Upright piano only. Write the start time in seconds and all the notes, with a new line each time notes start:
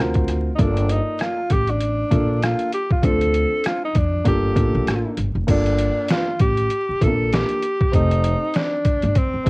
Already playing: C4 F4 F#4
0.00 A#4
0.58 A#3 F4 A4 D5
2.11 A#3 D4 F4 A4
3.02 C4 D4 F4 A4
4.24 A#3 D4 F4 A4
4.55 A#3 D4 F4 A4
5.47 A#3 D4 F4 A4
7.01 A3 D4 F4 A4
7.07 A#3
7.92 C4 D#4 G4 A4
9.45 C4 D#4 G4 A4